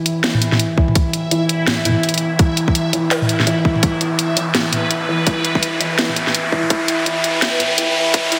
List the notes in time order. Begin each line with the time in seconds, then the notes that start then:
Already playing: E3 E4 E5 G5 B5, riser
0.06 closed hi-hat
0.24 E3, snare, closed hi-hat
0.34 mid tom
0.42 closed hi-hat
0.52 snare, mid tom
0.59 closed hi-hat
0.77 E3, kick
0.88 mid tom
0.95 kick, closed hi-hat
1.13 closed hi-hat
1.31 E3, closed hi-hat
1.49 closed hi-hat
1.67 snare, closed hi-hat, mid tom
1.85 E3, closed hi-hat, mid tom
1.89 mid tom
1.91 mid tom
2.03 closed hi-hat
2.09 closed hi-hat
2.14 closed hi-hat
2.18 closed hi-hat
2.39 E3, kick, closed hi-hat
2.57 closed hi-hat
2.68 kick
2.75 closed hi-hat
2.93 E3, closed hi-hat
3.11 snare, closed hi-hat
3.22 mid tom
3.29 closed hi-hat
3.40 snare, mid tom
3.42 snare
3.43 snare
3.45 E3, snare, closed hi-hat
3.65 kick
3.75 mid tom
3.83 E3 B4, kick, closed hi-hat
4.01 closed hi-hat
4.19 closed hi-hat
4.37 E3, closed hi-hat
4.55 E3, snare, closed hi-hat, mid tom
4.73 closed hi-hat, mid tom
4.91 closed hi-hat
5.09 E3
5.27 E3, kick, closed hi-hat
5.45 closed hi-hat
5.55 kick
5.63 closed hi-hat
5.80 E3, closed hi-hat
5.98 E3, snare, closed hi-hat
6.09 mid tom
6.16 closed hi-hat
6.27 snare, mid tom
6.35 closed hi-hat
6.52 E3, kick
6.63 mid tom
6.70 E3, kick, closed hi-hat
6.88 closed hi-hat
7.06 E3, closed hi-hat
7.24 closed hi-hat
7.42 E3, snare, closed hi-hat, mid tom
7.60 closed hi-hat, mid tom
7.78 E3, closed hi-hat
8.14 E3, kick, closed hi-hat
8.32 E3, closed hi-hat